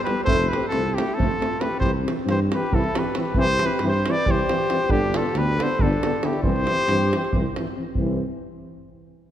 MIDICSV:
0, 0, Header, 1, 7, 480
1, 0, Start_track
1, 0, Key_signature, 0, "major"
1, 0, Tempo, 439560
1, 286, Time_signature, 7, 3, 24, 8
1, 10168, End_track
2, 0, Start_track
2, 0, Title_t, "Trumpet"
2, 0, Program_c, 0, 56
2, 42, Note_on_c, 0, 71, 103
2, 255, Note_off_c, 0, 71, 0
2, 263, Note_on_c, 0, 72, 127
2, 533, Note_on_c, 0, 71, 107
2, 549, Note_off_c, 0, 72, 0
2, 733, Note_off_c, 0, 71, 0
2, 740, Note_on_c, 0, 69, 109
2, 1030, Note_on_c, 0, 67, 99
2, 1046, Note_off_c, 0, 69, 0
2, 1246, Note_on_c, 0, 69, 115
2, 1263, Note_off_c, 0, 67, 0
2, 1754, Note_on_c, 0, 71, 100
2, 1771, Note_off_c, 0, 69, 0
2, 1952, Note_off_c, 0, 71, 0
2, 1958, Note_on_c, 0, 72, 109
2, 2086, Note_off_c, 0, 72, 0
2, 2512, Note_on_c, 0, 72, 101
2, 2627, Note_off_c, 0, 72, 0
2, 2774, Note_on_c, 0, 71, 95
2, 2994, Note_on_c, 0, 69, 101
2, 3010, Note_off_c, 0, 71, 0
2, 3262, Note_on_c, 0, 71, 91
2, 3278, Note_off_c, 0, 69, 0
2, 3457, Note_off_c, 0, 71, 0
2, 3490, Note_on_c, 0, 71, 103
2, 3698, Note_on_c, 0, 72, 127
2, 3715, Note_off_c, 0, 71, 0
2, 3997, Note_on_c, 0, 71, 105
2, 4013, Note_off_c, 0, 72, 0
2, 4186, Note_off_c, 0, 71, 0
2, 4234, Note_on_c, 0, 72, 109
2, 4486, Note_on_c, 0, 74, 113
2, 4502, Note_off_c, 0, 72, 0
2, 4705, Note_on_c, 0, 72, 111
2, 4721, Note_off_c, 0, 74, 0
2, 5362, Note_on_c, 0, 67, 121
2, 5378, Note_off_c, 0, 72, 0
2, 5638, Note_on_c, 0, 69, 100
2, 5654, Note_off_c, 0, 67, 0
2, 5874, Note_on_c, 0, 71, 123
2, 5890, Note_off_c, 0, 69, 0
2, 6148, Note_on_c, 0, 72, 110
2, 6164, Note_off_c, 0, 71, 0
2, 6359, Note_on_c, 0, 69, 108
2, 6376, Note_off_c, 0, 72, 0
2, 6826, Note_on_c, 0, 67, 90
2, 6842, Note_off_c, 0, 69, 0
2, 7022, Note_off_c, 0, 67, 0
2, 7029, Note_on_c, 0, 72, 127
2, 8227, Note_off_c, 0, 72, 0
2, 10168, End_track
3, 0, Start_track
3, 0, Title_t, "Flugelhorn"
3, 0, Program_c, 1, 56
3, 37, Note_on_c, 1, 67, 84
3, 253, Note_off_c, 1, 67, 0
3, 268, Note_on_c, 1, 69, 92
3, 577, Note_on_c, 1, 67, 80
3, 594, Note_off_c, 1, 69, 0
3, 746, Note_off_c, 1, 67, 0
3, 753, Note_on_c, 1, 65, 65
3, 1059, Note_on_c, 1, 64, 63
3, 1075, Note_off_c, 1, 65, 0
3, 1295, Note_on_c, 1, 65, 70
3, 1311, Note_off_c, 1, 64, 0
3, 1771, Note_on_c, 1, 67, 79
3, 1788, Note_off_c, 1, 65, 0
3, 1960, Note_off_c, 1, 67, 0
3, 1967, Note_on_c, 1, 67, 75
3, 2092, Note_off_c, 1, 67, 0
3, 2513, Note_on_c, 1, 67, 67
3, 2628, Note_off_c, 1, 67, 0
3, 2789, Note_on_c, 1, 67, 88
3, 3008, Note_on_c, 1, 64, 80
3, 3024, Note_off_c, 1, 67, 0
3, 3250, Note_on_c, 1, 67, 68
3, 3266, Note_off_c, 1, 64, 0
3, 3450, Note_off_c, 1, 67, 0
3, 3473, Note_on_c, 1, 67, 77
3, 3669, Note_off_c, 1, 67, 0
3, 3669, Note_on_c, 1, 67, 88
3, 3961, Note_off_c, 1, 67, 0
3, 3961, Note_on_c, 1, 67, 77
3, 4168, Note_off_c, 1, 67, 0
3, 4175, Note_on_c, 1, 67, 69
3, 4470, Note_on_c, 1, 71, 84
3, 4487, Note_off_c, 1, 67, 0
3, 4662, Note_on_c, 1, 67, 99
3, 4678, Note_off_c, 1, 71, 0
3, 5364, Note_on_c, 1, 62, 92
3, 5381, Note_off_c, 1, 67, 0
3, 5624, Note_on_c, 1, 65, 78
3, 5640, Note_off_c, 1, 62, 0
3, 5834, Note_on_c, 1, 67, 69
3, 5850, Note_off_c, 1, 65, 0
3, 6099, Note_on_c, 1, 69, 75
3, 6116, Note_off_c, 1, 67, 0
3, 6345, Note_on_c, 1, 62, 82
3, 6361, Note_off_c, 1, 69, 0
3, 6815, Note_on_c, 1, 64, 80
3, 6831, Note_off_c, 1, 62, 0
3, 7021, Note_off_c, 1, 64, 0
3, 7050, Note_on_c, 1, 67, 93
3, 8237, Note_off_c, 1, 67, 0
3, 10168, End_track
4, 0, Start_track
4, 0, Title_t, "Euphonium"
4, 0, Program_c, 2, 58
4, 95, Note_on_c, 2, 59, 68
4, 176, Note_off_c, 2, 59, 0
4, 304, Note_on_c, 2, 60, 79
4, 412, Note_off_c, 2, 60, 0
4, 595, Note_on_c, 2, 60, 73
4, 678, Note_off_c, 2, 60, 0
4, 788, Note_on_c, 2, 60, 73
4, 898, Note_off_c, 2, 60, 0
4, 1065, Note_on_c, 2, 60, 56
4, 1154, Note_off_c, 2, 60, 0
4, 1274, Note_on_c, 2, 60, 67
4, 1377, Note_off_c, 2, 60, 0
4, 1535, Note_on_c, 2, 60, 53
4, 1622, Note_off_c, 2, 60, 0
4, 1735, Note_on_c, 2, 60, 59
4, 1825, Note_off_c, 2, 60, 0
4, 1948, Note_on_c, 2, 60, 57
4, 2063, Note_off_c, 2, 60, 0
4, 2215, Note_on_c, 2, 60, 64
4, 2311, Note_off_c, 2, 60, 0
4, 2435, Note_on_c, 2, 60, 66
4, 2553, Note_off_c, 2, 60, 0
4, 2724, Note_on_c, 2, 60, 61
4, 2817, Note_off_c, 2, 60, 0
4, 2951, Note_on_c, 2, 60, 69
4, 3056, Note_off_c, 2, 60, 0
4, 3220, Note_on_c, 2, 60, 62
4, 3306, Note_off_c, 2, 60, 0
4, 3442, Note_on_c, 2, 60, 68
4, 3527, Note_off_c, 2, 60, 0
4, 3666, Note_on_c, 2, 60, 81
4, 3774, Note_off_c, 2, 60, 0
4, 3968, Note_on_c, 2, 60, 75
4, 4049, Note_off_c, 2, 60, 0
4, 4166, Note_on_c, 2, 60, 72
4, 4274, Note_off_c, 2, 60, 0
4, 4450, Note_on_c, 2, 60, 64
4, 4535, Note_off_c, 2, 60, 0
4, 4652, Note_on_c, 2, 60, 75
4, 4753, Note_off_c, 2, 60, 0
4, 4903, Note_on_c, 2, 60, 69
4, 4989, Note_off_c, 2, 60, 0
4, 5139, Note_on_c, 2, 60, 67
4, 5221, Note_off_c, 2, 60, 0
4, 5353, Note_on_c, 2, 59, 75
4, 5460, Note_off_c, 2, 59, 0
4, 5662, Note_on_c, 2, 59, 68
4, 5740, Note_off_c, 2, 59, 0
4, 5873, Note_on_c, 2, 59, 76
4, 5976, Note_off_c, 2, 59, 0
4, 6144, Note_on_c, 2, 59, 71
4, 6226, Note_off_c, 2, 59, 0
4, 6334, Note_on_c, 2, 59, 76
4, 6434, Note_off_c, 2, 59, 0
4, 6610, Note_on_c, 2, 59, 71
4, 6690, Note_off_c, 2, 59, 0
4, 6838, Note_on_c, 2, 59, 56
4, 6916, Note_off_c, 2, 59, 0
4, 7047, Note_on_c, 2, 60, 75
4, 7151, Note_off_c, 2, 60, 0
4, 7311, Note_on_c, 2, 60, 65
4, 7395, Note_off_c, 2, 60, 0
4, 7522, Note_on_c, 2, 60, 76
4, 7631, Note_off_c, 2, 60, 0
4, 7802, Note_on_c, 2, 60, 55
4, 7888, Note_off_c, 2, 60, 0
4, 7990, Note_on_c, 2, 60, 61
4, 8095, Note_off_c, 2, 60, 0
4, 8267, Note_on_c, 2, 60, 54
4, 8352, Note_off_c, 2, 60, 0
4, 8465, Note_on_c, 2, 60, 59
4, 8553, Note_off_c, 2, 60, 0
4, 8690, Note_on_c, 2, 60, 73
4, 8948, Note_off_c, 2, 60, 0
4, 10168, End_track
5, 0, Start_track
5, 0, Title_t, "Trombone"
5, 0, Program_c, 3, 57
5, 70, Note_on_c, 3, 55, 58
5, 156, Note_off_c, 3, 55, 0
5, 292, Note_on_c, 3, 57, 83
5, 402, Note_off_c, 3, 57, 0
5, 568, Note_on_c, 3, 57, 59
5, 656, Note_off_c, 3, 57, 0
5, 777, Note_on_c, 3, 57, 54
5, 890, Note_off_c, 3, 57, 0
5, 1067, Note_on_c, 3, 57, 64
5, 1155, Note_off_c, 3, 57, 0
5, 1298, Note_on_c, 3, 57, 66
5, 1396, Note_off_c, 3, 57, 0
5, 1529, Note_on_c, 3, 57, 58
5, 1617, Note_off_c, 3, 57, 0
5, 1755, Note_on_c, 3, 57, 57
5, 1840, Note_off_c, 3, 57, 0
5, 1989, Note_on_c, 3, 52, 66
5, 2096, Note_off_c, 3, 52, 0
5, 2271, Note_on_c, 3, 52, 44
5, 2355, Note_off_c, 3, 52, 0
5, 2496, Note_on_c, 3, 52, 60
5, 2601, Note_off_c, 3, 52, 0
5, 2766, Note_on_c, 3, 52, 66
5, 2851, Note_off_c, 3, 52, 0
5, 2974, Note_on_c, 3, 52, 78
5, 3074, Note_off_c, 3, 52, 0
5, 3228, Note_on_c, 3, 52, 66
5, 3312, Note_off_c, 3, 52, 0
5, 3451, Note_on_c, 3, 52, 56
5, 3534, Note_off_c, 3, 52, 0
5, 3666, Note_on_c, 3, 52, 92
5, 3774, Note_off_c, 3, 52, 0
5, 3932, Note_on_c, 3, 52, 73
5, 4020, Note_off_c, 3, 52, 0
5, 4181, Note_on_c, 3, 52, 75
5, 4286, Note_off_c, 3, 52, 0
5, 4458, Note_on_c, 3, 52, 71
5, 4541, Note_off_c, 3, 52, 0
5, 4679, Note_on_c, 3, 52, 75
5, 4775, Note_off_c, 3, 52, 0
5, 4934, Note_on_c, 3, 52, 73
5, 5014, Note_off_c, 3, 52, 0
5, 5140, Note_on_c, 3, 52, 65
5, 5222, Note_off_c, 3, 52, 0
5, 5345, Note_on_c, 3, 50, 85
5, 5454, Note_off_c, 3, 50, 0
5, 5618, Note_on_c, 3, 50, 59
5, 5706, Note_off_c, 3, 50, 0
5, 5840, Note_on_c, 3, 50, 54
5, 5950, Note_off_c, 3, 50, 0
5, 6112, Note_on_c, 3, 50, 82
5, 6200, Note_off_c, 3, 50, 0
5, 6347, Note_on_c, 3, 50, 71
5, 6445, Note_off_c, 3, 50, 0
5, 6593, Note_on_c, 3, 50, 74
5, 6677, Note_off_c, 3, 50, 0
5, 6808, Note_on_c, 3, 50, 72
5, 6892, Note_off_c, 3, 50, 0
5, 7024, Note_on_c, 3, 52, 74
5, 7132, Note_off_c, 3, 52, 0
5, 7307, Note_on_c, 3, 52, 64
5, 7392, Note_off_c, 3, 52, 0
5, 7529, Note_on_c, 3, 52, 61
5, 7637, Note_off_c, 3, 52, 0
5, 7797, Note_on_c, 3, 52, 61
5, 7885, Note_off_c, 3, 52, 0
5, 8018, Note_on_c, 3, 52, 68
5, 8117, Note_off_c, 3, 52, 0
5, 8286, Note_on_c, 3, 52, 68
5, 8367, Note_off_c, 3, 52, 0
5, 8499, Note_on_c, 3, 52, 59
5, 8580, Note_off_c, 3, 52, 0
5, 8704, Note_on_c, 3, 52, 82
5, 8955, Note_off_c, 3, 52, 0
5, 10168, End_track
6, 0, Start_track
6, 0, Title_t, "Tuba"
6, 0, Program_c, 4, 58
6, 276, Note_on_c, 4, 29, 113
6, 554, Note_off_c, 4, 29, 0
6, 797, Note_on_c, 4, 36, 84
6, 1069, Note_off_c, 4, 36, 0
6, 1291, Note_on_c, 4, 29, 99
6, 1429, Note_off_c, 4, 29, 0
6, 1969, Note_on_c, 4, 36, 91
6, 2244, Note_off_c, 4, 36, 0
6, 2468, Note_on_c, 4, 43, 99
6, 2743, Note_off_c, 4, 43, 0
6, 2965, Note_on_c, 4, 36, 108
6, 3105, Note_off_c, 4, 36, 0
6, 3640, Note_on_c, 4, 36, 97
6, 3919, Note_off_c, 4, 36, 0
6, 4155, Note_on_c, 4, 43, 88
6, 4429, Note_off_c, 4, 43, 0
6, 4661, Note_on_c, 4, 36, 100
6, 4797, Note_off_c, 4, 36, 0
6, 5339, Note_on_c, 4, 31, 111
6, 5612, Note_off_c, 4, 31, 0
6, 5832, Note_on_c, 4, 38, 91
6, 6107, Note_off_c, 4, 38, 0
6, 6342, Note_on_c, 4, 31, 115
6, 6478, Note_off_c, 4, 31, 0
6, 7015, Note_on_c, 4, 36, 99
6, 7289, Note_off_c, 4, 36, 0
6, 7512, Note_on_c, 4, 43, 97
6, 7787, Note_off_c, 4, 43, 0
6, 8017, Note_on_c, 4, 36, 106
6, 8154, Note_off_c, 4, 36, 0
6, 8704, Note_on_c, 4, 36, 99
6, 8955, Note_off_c, 4, 36, 0
6, 10168, End_track
7, 0, Start_track
7, 0, Title_t, "Davul"
7, 72, Note_on_c, 9, 37, 65
7, 181, Note_off_c, 9, 37, 0
7, 298, Note_on_c, 9, 43, 102
7, 407, Note_off_c, 9, 43, 0
7, 443, Note_on_c, 9, 37, 31
7, 553, Note_off_c, 9, 37, 0
7, 582, Note_on_c, 9, 37, 72
7, 691, Note_off_c, 9, 37, 0
7, 692, Note_on_c, 9, 37, 23
7, 789, Note_off_c, 9, 37, 0
7, 789, Note_on_c, 9, 37, 65
7, 898, Note_off_c, 9, 37, 0
7, 1074, Note_on_c, 9, 37, 83
7, 1182, Note_off_c, 9, 37, 0
7, 1182, Note_on_c, 9, 37, 25
7, 1292, Note_off_c, 9, 37, 0
7, 1309, Note_on_c, 9, 43, 92
7, 1418, Note_off_c, 9, 43, 0
7, 1435, Note_on_c, 9, 37, 28
7, 1544, Note_off_c, 9, 37, 0
7, 1553, Note_on_c, 9, 37, 64
7, 1663, Note_off_c, 9, 37, 0
7, 1672, Note_on_c, 9, 37, 25
7, 1761, Note_off_c, 9, 37, 0
7, 1761, Note_on_c, 9, 37, 70
7, 1870, Note_off_c, 9, 37, 0
7, 1977, Note_on_c, 9, 43, 76
7, 2086, Note_off_c, 9, 43, 0
7, 2271, Note_on_c, 9, 37, 71
7, 2380, Note_off_c, 9, 37, 0
7, 2392, Note_on_c, 9, 37, 23
7, 2497, Note_off_c, 9, 37, 0
7, 2497, Note_on_c, 9, 37, 72
7, 2606, Note_off_c, 9, 37, 0
7, 2748, Note_on_c, 9, 37, 79
7, 2857, Note_off_c, 9, 37, 0
7, 2977, Note_on_c, 9, 43, 89
7, 3086, Note_off_c, 9, 43, 0
7, 3099, Note_on_c, 9, 37, 28
7, 3208, Note_off_c, 9, 37, 0
7, 3225, Note_on_c, 9, 37, 89
7, 3335, Note_off_c, 9, 37, 0
7, 3439, Note_on_c, 9, 37, 73
7, 3549, Note_off_c, 9, 37, 0
7, 3552, Note_on_c, 9, 37, 30
7, 3653, Note_on_c, 9, 43, 91
7, 3661, Note_off_c, 9, 37, 0
7, 3762, Note_off_c, 9, 43, 0
7, 3924, Note_on_c, 9, 37, 78
7, 4027, Note_off_c, 9, 37, 0
7, 4027, Note_on_c, 9, 37, 25
7, 4136, Note_off_c, 9, 37, 0
7, 4141, Note_on_c, 9, 37, 69
7, 4250, Note_off_c, 9, 37, 0
7, 4429, Note_on_c, 9, 37, 88
7, 4538, Note_off_c, 9, 37, 0
7, 4655, Note_on_c, 9, 43, 90
7, 4764, Note_off_c, 9, 43, 0
7, 4793, Note_on_c, 9, 37, 30
7, 4902, Note_off_c, 9, 37, 0
7, 4908, Note_on_c, 9, 37, 79
7, 5018, Note_off_c, 9, 37, 0
7, 5132, Note_on_c, 9, 37, 70
7, 5241, Note_off_c, 9, 37, 0
7, 5242, Note_on_c, 9, 37, 32
7, 5345, Note_on_c, 9, 43, 93
7, 5352, Note_off_c, 9, 37, 0
7, 5455, Note_off_c, 9, 43, 0
7, 5615, Note_on_c, 9, 37, 87
7, 5724, Note_off_c, 9, 37, 0
7, 5742, Note_on_c, 9, 37, 25
7, 5844, Note_off_c, 9, 37, 0
7, 5844, Note_on_c, 9, 37, 64
7, 5953, Note_off_c, 9, 37, 0
7, 6117, Note_on_c, 9, 37, 79
7, 6226, Note_off_c, 9, 37, 0
7, 6326, Note_on_c, 9, 43, 106
7, 6435, Note_off_c, 9, 43, 0
7, 6475, Note_on_c, 9, 37, 30
7, 6584, Note_off_c, 9, 37, 0
7, 6586, Note_on_c, 9, 37, 87
7, 6695, Note_off_c, 9, 37, 0
7, 6803, Note_on_c, 9, 37, 73
7, 6912, Note_off_c, 9, 37, 0
7, 6914, Note_on_c, 9, 37, 28
7, 7023, Note_off_c, 9, 37, 0
7, 7026, Note_on_c, 9, 43, 86
7, 7135, Note_off_c, 9, 43, 0
7, 7164, Note_on_c, 9, 37, 25
7, 7273, Note_off_c, 9, 37, 0
7, 7283, Note_on_c, 9, 37, 65
7, 7392, Note_off_c, 9, 37, 0
7, 7520, Note_on_c, 9, 37, 62
7, 7629, Note_off_c, 9, 37, 0
7, 7786, Note_on_c, 9, 37, 68
7, 7895, Note_off_c, 9, 37, 0
7, 7912, Note_on_c, 9, 37, 30
7, 8002, Note_on_c, 9, 43, 88
7, 8021, Note_off_c, 9, 37, 0
7, 8111, Note_off_c, 9, 43, 0
7, 8259, Note_on_c, 9, 37, 66
7, 8369, Note_off_c, 9, 37, 0
7, 8377, Note_on_c, 9, 37, 22
7, 8486, Note_off_c, 9, 37, 0
7, 8684, Note_on_c, 9, 43, 69
7, 8794, Note_off_c, 9, 43, 0
7, 10168, End_track
0, 0, End_of_file